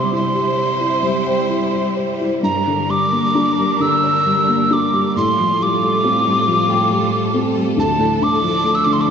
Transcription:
Already playing: C3 G3 E4 C5 C6
0.12 E4 C6
0.34 G4
0.57 C5
0.80 E4
1.02 G3
1.26 G5
1.50 E4
1.73 G4
1.97 C5
2.20 E4
2.41 G2 D4 A#4 A#5
2.67 D3
2.89 G3 D6
3.12 A#3
3.35 D4
3.58 G3
3.80 D3 E6
4.04 D5
4.26 G3
4.48 A#3
4.71 D4 D6
4.93 G3
5.16 A2 F4 A4 C6
5.39 F3
5.60 G3 D6
5.82 A3
6.04 C4
6.26 G3
6.48 F3
6.70 G5
6.91 G3
7.12 A3
7.34 C4
7.55 G3
7.77 D2 F3 D4 A5
7.98 A2
8.21 D3 D6
8.43 F3
8.64 A3
8.75 E6
8.84 D3 D6
8.93 C6
9.01 D6

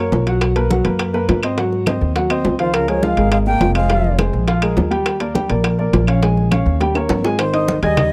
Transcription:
Already playing: A#3 A#4 C#5
0.12 B1, high bongo, low bongo, high conga, low timbale
0.26 F#3 F#4 F#5, high timbale
0.41 high bongo, high conga, high timbale, claves
0.56 A#3 A#4 B4, high bongo, high conga, high timbale
0.70 F#3 F#4 F#5, high bongo, high conga, low timbale
0.84 F#2 A#3 A#4 B4, high bongo, high conga, high timbale
0.99 high bongo, high conga, high timbale, claves
1.14 A#3 A#4 B4, high bongo, high conga
1.29 G#2, high bongo, low bongo, high conga, high timbale, low timbale
1.43 C4 C5 D#5, high timbale, claves
1.57 F#3 F#4 F#5, high bongo, high conga, high timbale
1.72 high bongo, high conga
1.86 C4 C5 D#5, high bongo, high conga, high timbale, low timbale, claves
2.01 D#2, high bongo, high conga
2.16 F#3 F#4 F#5, high bongo, high conga, high timbale
2.30 C4 C5 D#5, high bongo, high conga, high timbale, claves
2.45 C#2, high bongo, low bongo, high conga, low timbale
2.59 D#3 F3 F4 C5 F5, high timbale
2.74 C#3 A#4, high bongo, high conga, high timbale, claves
2.88 F3 G#3 G#4 A#4 C#5, high bongo, high conga, high timbale
3.03 F3 G#3 F4 F5, high bongo, high conga, low timbale
3.17 G#1 G#3 G#4 A#4, high bongo, high conga, high timbale
3.32 G#3 F5, high bongo, high conga, high timbale, claves
3.46 G#3 A#3 G#4 A#4 G5, high bongo, high conga
3.61 F1, high bongo, low bongo, high conga, high timbale, low timbale
3.75 G#3 G#4 C5 F5, high timbale, claves
3.90 F3 F4 F5, high bongo, high conga, high timbale
4.04 high bongo, high conga
4.19 G#3 G#4 C5, high bongo, high conga, high timbale, low timbale, claves
4.33 A#1, high bongo, high conga
4.48 F3 F4 F5, high bongo, high conga, high timbale
4.62 G#3 G#4 A#4, high bongo, high conga, high timbale, claves
4.77 D#2, high bongo, low bongo, high conga, low timbale
4.91 G3 G4 G5, high timbale
5.06 high bongo, high conga, high timbale, claves
5.20 A#3 A#4 D5, high bongo, high conga, high timbale
5.34 G3 G4 G5, high bongo, high conga, low timbale
5.49 A#1 A#3 A#4 D5, high bongo, high conga, high timbale
5.64 high bongo, high conga, high timbale, claves
5.78 A#3 A#4 D5, high bongo, high conga
5.93 A#1, high bongo, low bongo, high conga, high timbale, low timbale
6.07 C#4 C#5 F5, high timbale, claves
6.22 G#3 G#4 G#5, high bongo, high conga, high timbale
6.37 high bongo, high conga
6.51 C#4 C#5 F5, high bongo, high conga, high timbale, low timbale, claves
6.66 D#2, high bongo, high conga
6.80 G3 G4 G5, high bongo, high conga, high timbale
6.95 A#3 A#4 C#5, high bongo, high conga, high timbale, claves
7.09 G#1, low bongo, high conga, high timbale
7.24 G#3 G#4 G#5, low bongo, low timbale
7.39 D#3 C5, high bongo, high conga, high timbale, claves
7.53 D#4 D#5 D#6, high bongo, high conga, high timbale
7.68 high bongo, high conga, low timbale
7.82 D#2 G3 G#4 D#5 G#5 G#6, high bongo, high conga, high timbale
7.97 D#4 D#5 D#6, high bongo, high conga, low conga, high timbale, claves

